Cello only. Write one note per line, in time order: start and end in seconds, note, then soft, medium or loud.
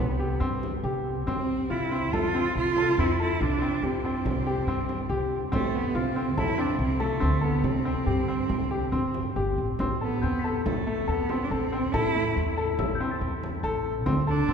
0.00 0.42 B3 medium
1.28 1.72 C4 medium
1.71 2.16 E4 medium
2.14 2.56 F4 medium
2.57 3.01 F4 medium
2.99 3.20 E4 medium
3.21 3.43 E4 medium
3.42 3.86 D4 medium
3.85 5.32 C4 medium
5.54 5.76 A3 medium
5.75 5.97 B3 medium
5.96 6.40 C4 medium
6.39 6.61 E4 medium
6.60 6.80 D4 medium
6.81 7.02 C4 medium
7.01 7.45 A3 medium
7.44 7.66 B3 medium
7.64 9.36 C4 medium
10.02 10.62 B3 medium
10.66 11.10 A3 medium
11.09 11.46 B3 medium
11.44 11.52 D4 medium
11.51 11.95 C4 medium
11.93 12.36 E4 medium
14.28 14.53 D4 medium